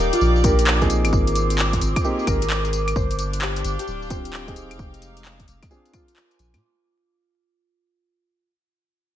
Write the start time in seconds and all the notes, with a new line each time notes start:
Already playing: D#4 G4 A#4 C5 D5 F5 G5 D6
0.00 D#1
0.13 F4, closed hi-hat, tambourine
0.21 A#1, tambourine
0.36 tambourine
0.44 A#3 D4 F4 G4 A#4, kick, open hi-hat, tambourine
0.59 closed hi-hat, tambourine
0.67 clap, tambourine
0.82 A#3 C4 D#4 G#4, kick, closed hi-hat, tambourine
0.90 C4, open hi-hat, tambourine
1.05 G#1, closed hi-hat, tambourine, claves
1.13 G#1, kick, tambourine
1.27 A#4, closed hi-hat, tambourine
1.36 open hi-hat, tambourine
1.50 closed hi-hat, tambourine
1.59 G#4, clap, tambourine
1.73 kick, closed hi-hat, tambourine
1.81 G#1, open hi-hat, tambourine
1.96 kick, closed hi-hat, tambourine, claves
2.04 A#3 C4 D#4 G4, tambourine
2.19 tambourine
2.27 G#1 A#4, kick, open hi-hat, tambourine, claves
2.42 closed hi-hat, tambourine
2.50 clap, tambourine
2.65 closed hi-hat, tambourine
2.73 open hi-hat, tambourine
2.88 closed hi-hat, tambourine, claves
2.96 G1 D4 C5, kick, tambourine
3.11 C5, closed hi-hat, tambourine
3.19 open hi-hat, tambourine
3.28 F5
3.33 closed hi-hat, tambourine
3.42 G4, clap, tambourine
3.50 G5
3.56 closed hi-hat, tambourine
3.64 G1, open hi-hat, tambourine
3.79 G4, closed hi-hat, tambourine
3.87 D1, tambourine
4.02 tambourine
4.10 C4 D4 F4 G4 C5, kick, open hi-hat, tambourine
4.25 closed hi-hat, tambourine
4.33 clap, tambourine
4.48 C4 D#4 G4 G#4, kick, closed hi-hat, tambourine
4.56 D#4, open hi-hat, tambourine
4.71 F1, closed hi-hat, tambourine, claves
4.77 F1 G#3, kick, tambourine
4.94 closed hi-hat, tambourine
5.02 open hi-hat, tambourine
5.17 closed hi-hat, tambourine
5.25 clap, tambourine
5.40 kick, closed hi-hat, tambourine
5.48 F1, open hi-hat, tambourine
5.63 kick, snare, closed hi-hat, tambourine, claves
5.71 C4 D4 F4 G#4, tambourine
5.85 A#4, closed hi-hat, tambourine
5.92 F4 C5, kick, open hi-hat, tambourine, claves
6.08 closed hi-hat, tambourine
6.14 G#5, clap, tambourine
6.31 closed hi-hat, tambourine
6.39 A#1, open hi-hat, tambourine
6.54 A#2, snare, closed hi-hat, tambourine, claves